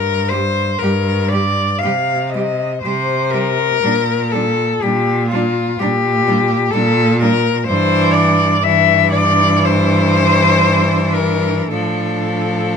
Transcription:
Already playing: G2 A#4
0.29 G3 G4 C5
0.79 G2 G3 G4 A#4
1.29 G3 D5
1.34 G4
1.79 C3 F5
1.83 G3 G4
2.30 D#5
2.34 G3 G4
2.82 C3 G3 G4 C5
3.31 G3 G4 A#4
3.83 A#2 G3 D4
4.31 G3 D4 A4
4.82 A#2 G3 D4 G4
5.30 G3 F4
5.34 D4
5.79 A#2 G3 D4 G4
6.27 G3 D4
6.71 A#2 G3 A4
6.75 D4
7.19 G3 D4 A#4
7.67 G2 E3 D4 C5
8.13 D5
8.63 E3 D4 E5
9.12 D5
9.65 C5
11.15 A#4
11.70 A2 F3 D4 A4

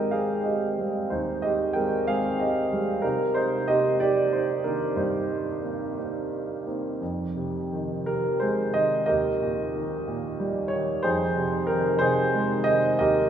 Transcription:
Already playing: G#2 D#3 G#3 C4 D#4 G4 A#4 C5 D#5 G5
0.11 G#3 C4 G#4 F5
0.43 G4 D#5
0.78 G3 G#3 C4
1.10 D#2 D#4 C5
1.42 G4 D#5
1.73 D#3 G#3 C4 A#4 G5
2.07 G#3 C4 G#4 F5
2.40 G4 D#5
2.73 G3 G#3 C4
3.02 C3 D#4 A#4
3.34 D#4 C5
3.68 A#3 C4 D#4 G4 D#5
3.98 A#3 C4 D#4 G4 D5
4.33 D#4 C5
4.63 D#3 A#3 C4 D4 A#4
4.96 G2 D#4 C5
5.62 A#3 C4 D#4
5.97 A#3 C4 D#4
6.66 A#3 C4 D#4
7.02 F2
7.36 C3
7.72 D#3
8.06 C3 A#4
8.40 G#3 C5
8.74 D#3 D#5
9.06 D#2 G4 A#4 D#5
9.42 A#2
9.74 D#3
10.08 A#2
10.40 G3
10.68 C#5
10.72 D#3
11.03 F2 D#4 G#4 C5
11.36 C3
11.67 D#3 A#4
11.99 C3 D#4 G#4 C5
12.34 G#3
12.64 D#3 D#5
12.99 D#2 G4 A#4 D#5

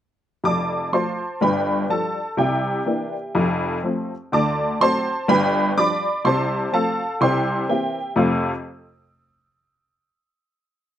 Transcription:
0.44 F1 F2 D5 A5 D6
0.92 F3 A3 F4 C5 A5 C6
1.41 G1 G2 B4 G5 B5
1.89 F3 G3 D4 A4 A5
2.37 C2 C3 G4 E5 G5
2.86 E3 A#3 D4
3.35 F1 F2
3.84 F3 A3 C4
4.32 D2 D3 D5 A5 D6
4.80 F#3 A3 C4 C5 A5 C6
5.28 G1 G2 B4 G5 B5
5.77 F3 G3 D4 D5 B5 D6
6.25 C2 C3 C5 A5 C6
6.72 F3 A3 C4 A4 F5 A5
7.21 C2 C3 C5 G5 C6
7.69 E3 A#3 C4 G4 E5 G5
8.16 F2 C3 A3 C4 F4 A4 F5

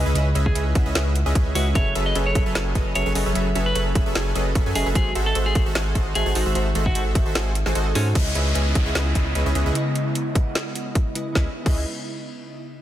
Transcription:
Already playing: C#3 G#3 E4 B4 D#5 F#5
0.06 C#2 C#4 G#4 B4 D#5 E5
0.14 C#2 C#3 G#3 C#4 E4 G#4 B4 D#5 E5, closed hi-hat
0.35 C#2 C#4 G#4 B4 D#5 E5, closed hi-hat
0.46 G#4, kick
0.55 C#2 C#4 G#4 B4 D#5 E5, closed hi-hat
0.74 C#2 C#3 G#3 C#4 E4 G#4 B4 D#5 E5 F#5, kick, closed hi-hat
0.86 C#2 C#4 G#4 B4 D#5 E5
0.95 C#2 C#4 G#4 B4 D#5 E5, snare, closed hi-hat
1.15 closed hi-hat
1.26 C#2 C#4 G#4 B4 D#5 E5
1.35 C#2 C#4, kick, closed hi-hat
1.54 C#2 C#3 G#3 C#4 E4 F#4 G#4 B4 D#5 E5, open hi-hat
1.74 F#1 F#3 C#4 G#4 A4 B4 C#5 E5, kick, closed hi-hat
1.95 F#1 F#3 C#4 G#4 A4 B4 E5, closed hi-hat
2.06 D#5
2.15 F#1 F#3 C#4 G#4 A4 B4 E5, closed hi-hat
2.26 C#5
2.34 F#1 F#3 C#4 G#4 A4 B4 E5, kick, closed hi-hat
2.46 F#1 F#3 C#4 G#4 A4 B4 E5
2.55 F#1 F#3 C#4 G#4 A4 B4 G#5, snare, closed hi-hat
2.75 F#1 F#3 C#4 G#4 A4 B4 D#5, kick, closed hi-hat
2.95 F#1 F#3 C#4 G#4 A4 B4 C#5 E5, closed hi-hat
3.06 F#1 F#3 C#4 G#4 A4 B4 G#5
3.14 F#1 F#3 C#4 G#4 A4 B4 D#5 E5, open hi-hat
3.26 F#1 F#3 C#4 G#4 A4 B4 E5
3.33 F#1 F#3 C#4 G#4 A4 B4 E5, closed hi-hat
3.55 F#1 F#3 C#4 G#4 A4 B4 E5, closed hi-hat
3.66 B4
3.75 F#1 F#3 C#4 G#4 A4 B4 E5, closed hi-hat
3.93 F#1 F#3 C#4 G#4 A4 B4 E5, kick, closed hi-hat
4.06 F#1 F#3 C#4 G#4 A4 B4 E5
4.15 F#1 F#3 C#4 G#4 A4 B4 G#5, snare, closed hi-hat
4.35 F#1 F#3 C#4 G#4 A4 B4 D#5, closed hi-hat
4.55 F#1 F#3 C#4 G#4 A4 B4 E5, kick, closed hi-hat
4.66 F#2 F#3 C#4 G#4 A4 B4 G#5
4.74 F#1 F#3 C#4 G#4 A4 B4 D#5 E5, open hi-hat
4.86 F#1 F#3 C#4 G#4 A4 B4 E5
4.94 G#1 D#3 G#3 F#4 G#4 A4 C5, kick, closed hi-hat
4.98 E5
5.15 G#1 G#3 F#4 A4 C5 E5, closed hi-hat
5.26 A4
5.35 G#1 G#3 F#4 A4 C5 E5, closed hi-hat
5.46 G#4
5.53 G#1 D#3 G#3 F#4 A4 C5 E5, kick, closed hi-hat
5.58 E5
5.66 G#1 G#3 F#4 A4 C5 E5
5.75 G#1 G#3 F#4 A4 C5 G#5, snare, closed hi-hat
5.95 G#1 G#3 F#4 A4 C5 D#5, kick, closed hi-hat
6.15 G#1 G#3 F#4 G#4 A4 C5 E5, closed hi-hat
6.26 G#1 G#3 F#4 A4 C5 G#5
6.34 G#1 G#3 D#4 F#4 A4 C5 D#5 E5, open hi-hat
6.46 G#1 G#3 F#4 A4 C5 E5
6.53 G#1 D#3 G#3 F#4 A4 C5 E5, closed hi-hat
6.57 E5
6.75 G#1 G#3 F#4 A4 C5 E5, closed hi-hat
6.86 F#4, kick
6.95 G#1 G#3 F#4 A4 C5 E5, closed hi-hat
7.13 G#1 D#3 G#3 F#4 A4 C5 E5, kick, closed hi-hat
7.17 E5
7.26 G#1 G#3 F#4 A4 C5 E5
7.35 G#1 G#3 F#4 A4 G#5, snare, closed hi-hat
7.55 closed hi-hat
7.66 G#1 G#3 F#4 A4 C5 G#5, snare
7.75 G#1 G#3 F#4 A4 C5 D#5, closed hi-hat
7.95 G#2 G#3 C#4 D#4 F#4 A4 C5 E5 G#5, open hi-hat
8.14 C#2 C#3 G#3 B3 C#4 E4 G#4 B4 D#5 E5, kick, closed hi-hat, crash, downlifter
8.35 C#2 C#4 G#4 B4 D#5 E5, closed hi-hat
8.55 C#2 C#4 G#4 B4 D#5 E5, closed hi-hat
8.74 C#2 C#3 G#3 C#4 E4 G#4 B4 D#5 E5, kick, closed hi-hat
8.78 F#5
8.86 C#2 C#4 G#4 B4 D#5 E5
8.95 C#2 C#4 G#4 B4 D#5 E5, snare, closed hi-hat
9.15 C#2 C#4 G#4 B4 D#5 E5, kick, closed hi-hat
9.35 C#2 C#4 G#4 B4 D#5 E5, closed hi-hat
9.46 C#2 C#4 G#4 B4 D#5 E5
9.54 C#2 C#3 G#3 C#4 E4 G#4 B4 D#5 E5, closed hi-hat
9.66 C#2 C#4 G#4 B4 D#5 E5
9.73 C#3 G#3 E4 B4 D#5, closed hi-hat
9.95 closed hi-hat
10.15 closed hi-hat
10.33 C#3 G#3 E4 B4 F#5, kick, closed hi-hat
10.55 snare, closed hi-hat
10.75 closed hi-hat
10.95 kick, closed hi-hat
11.14 C#3 G#3 E4 B4 D#5, closed hi-hat
11.32 C#2 C#3 G#3 B3 C#4 D#4 E4 G#4 B4 D#5 E5, kick, snare
11.37 B4 D#5
11.63 C#2 C#3 G#3 C#4 E4 G#4 B4 D#5 E5, kick, crash
11.68 B4 D#5

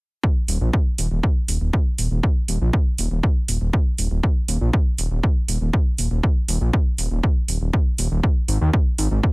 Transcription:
0.23 kick
0.48 D#1, open hi-hat
0.61 A#1
0.73 kick
0.98 D#1, open hi-hat
1.11 D#1
1.23 kick
1.48 D#1, open hi-hat
1.61 D#1
1.73 kick
1.98 D#1, open hi-hat
2.11 D#1
2.23 kick
2.48 D#1, open hi-hat
2.61 A#1
2.73 kick
2.98 D#1, open hi-hat
3.11 D#1
3.23 kick
3.48 D#1, open hi-hat
3.61 D#1
3.73 kick
3.98 D#1, open hi-hat
4.11 D#1
4.23 kick
4.48 D#1, open hi-hat
4.61 A#1
4.73 kick
4.98 D#1, open hi-hat
5.11 D#1
5.23 kick
5.48 D#1, open hi-hat
5.61 D#1
5.73 kick
5.98 D#1, open hi-hat
6.11 D#1
6.23 kick
6.48 D#1, open hi-hat
6.61 A#1
6.73 kick
6.98 D#1, open hi-hat
7.11 D#1
7.23 kick
7.48 D#1, open hi-hat
7.61 D#1
7.73 kick
7.98 D#1, open hi-hat
8.11 D#1
8.23 kick
8.48 G#1, open hi-hat
8.61 D#2
8.73 kick
8.98 G#1, open hi-hat
9.11 G#1
9.23 kick

